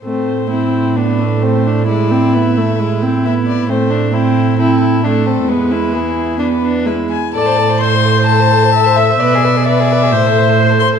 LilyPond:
<<
  \new Staff \with { instrumentName = "Violin" } { \time 4/4 \key a \minor \tempo 4 = 131 c''2 b'4 c''4 | d''4 e''2 e''8 d''8 | c''4 c''4 a'4 a'4 | b'4 gis'4 b'4 b'8 gis''8 |
a''4 c'''4 a''4. e''8 | d''4 e''2~ e''8 c'''8 | }
  \new Staff \with { instrumentName = "Violin" } { \time 4/4 \key a \minor c'4 e'4 d'4 c'8 d'8 | e'2 e'2 | c'8 d'8 e'4 e'8 e'8 d'8 c'8 | b8 e'4. d'8 d'8 e'8 r8 |
a'16 c''16 a'16 c''16 a'16 c''16 a'16 c''16 a'16 c''16 a'16 c''16 a'16 c''16 a'16 c''16 | b'16 gis'16 b'16 gis'16 b'16 gis'16 b'16 gis'16 c''16 a'16 c''16 a'16 c''16 a'16 c''16 a'16 | }
  \new Staff \with { instrumentName = "Viola" } { \time 4/4 \key a \minor a4 c'4 b8 a4. | gis8 c'8 b8 a8 gis8 c'8 b4 | a4 c'4 c'4 a4 | gis4 b4 b4 gis8 r8 |
d''4 c''2 e''4~ | e''4 d''4 c''2 | }
  \new Staff \with { instrumentName = "Cello" } { \clef bass \time 4/4 \key a \minor a,1~ | a,1 | a,1 | e,2.~ e,8 r8 |
a,1 | b,2 a,2 | }
>>